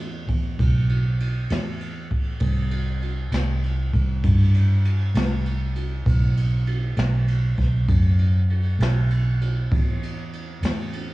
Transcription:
Already playing: E2
0.29 E2, kick, ride
0.59 B1, kick, ride
0.89 ride
1.20 ride
1.50 E2, snare, ride
1.81 ride
2.11 kick, ride
2.40 C2, kick, ride
2.71 ride
3.02 ride
3.31 C2, snare, ride
3.63 ride
3.93 C2, kick, ride
4.24 G2, kick, ride
4.54 ride
4.85 ride
5.14 C2, snare, ride
5.46 ride
5.76 ride
6.06 B1, kick, ride
6.37 ride
6.67 ride
6.97 B1, snare, ride
7.28 ride
7.58 B1, kick, snare, ride
7.88 F#2, kick, ride
8.19 ride
8.50 ride
8.79 B1, snare, ride
9.10 ride
9.41 ride
9.72 E2, kick, ride
10.03 ride
10.33 ride
10.62 E2, snare, ride
10.93 ride

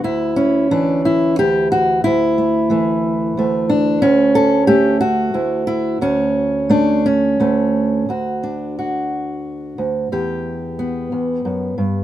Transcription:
0.04 D2 E4
0.36 C#4
0.71 E3 D4
1.05 E4
1.39 D2 G4
1.72 F#4
2.04 D2 E4
2.38 A3
2.70 E3 A3
3.37 D2 A3
3.69 D4
4.02 D2 C#4
4.35 A4
4.67 A3 G4
5.01 F#4
5.34 D2 E4
5.67 E4
6.01 D2 C#4
6.69 A3 D4
7.06 C#4
7.40 D2 A3
8.09 D2 F#4
8.43 D4
8.79 F#4
9.78 D2
10.12 E2 G4
10.79 B3
11.12 E2
11.45 F#2
11.78 G2

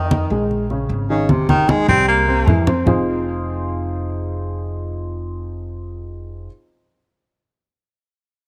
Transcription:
Already playing: F2 D#3 D#4 D#5
0.11 high conga
0.30 A#1 G#3 G#4, high conga
0.51 high conga
0.70 C#3 C#4, high conga
0.89 G#1, high conga
1.10 C#3 D#3 D#4
1.29 C3 C4, high conga
1.49 D#3, high conga
1.69 D#3 G#3 D#4, high conga
1.88 C2 G3 C4 G4, low conga
2.08 A#3
2.28 C3 C4
2.47 F2 E3 E4, low conga
2.67 C4 C5, low conga
2.86 F1 F3 C4 D#4 F4 G#4 C5, low conga

